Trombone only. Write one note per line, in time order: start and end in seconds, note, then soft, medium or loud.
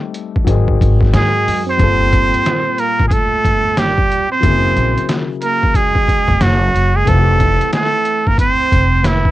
1.13 1.63 G#3 medium
1.66 2.80 C4 medium
2.79 3.05 A#3 medium
3.06 3.13 G#3 medium
3.11 3.80 A3 medium
3.78 4.30 G3 medium
4.31 5.12 C4 medium
5.43 5.76 A#3 medium
5.75 6.43 G#3 medium
6.41 6.96 F#3 medium
6.95 7.09 G#3 medium
7.07 7.73 A3 medium
7.74 8.28 A3 medium
8.27 8.38 A#3 medium
8.39 9.06 C4 medium
9.04 9.31 E3 medium